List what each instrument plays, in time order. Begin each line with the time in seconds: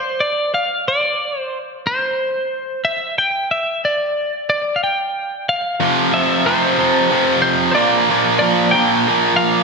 Already playing: clean electric guitar C5
0.21 clean electric guitar D5
0.54 clean electric guitar F5
0.88 clean electric guitar D5
1.39 clean electric guitar C5
1.87 clean electric guitar C5
2.85 clean electric guitar E5
3.18 clean electric guitar G5
3.51 clean electric guitar E5
3.85 clean electric guitar D5
4.50 clean electric guitar D5
4.76 clean electric guitar F5
4.84 clean electric guitar G5
5.49 clean electric guitar F5
5.80 distorted electric guitar F2 C3 F3
6.13 distorted electric guitar F2 C3 F3, clean electric guitar E5
6.46 distorted electric guitar F2 C3 F3, clean electric guitar C5
6.78 distorted electric guitar F2 C3 F3
7.11 distorted electric guitar F2 C3 F3
7.42 clean electric guitar C5
7.72 distorted electric guitar A#2, clean electric guitar C5 D5
7.76 distorted electric guitar F3 A#3
8.10 distorted electric guitar A#2 F3 A#3
8.39 distorted electric guitar A#2, clean electric guitar D5
8.43 distorted electric guitar F3 A#3
8.71 distorted electric guitar A#2, clean electric guitar G5
8.75 distorted electric guitar F3 A#3
9.08 distorted electric guitar A#2 F3 A#3
9.37 clean electric guitar F5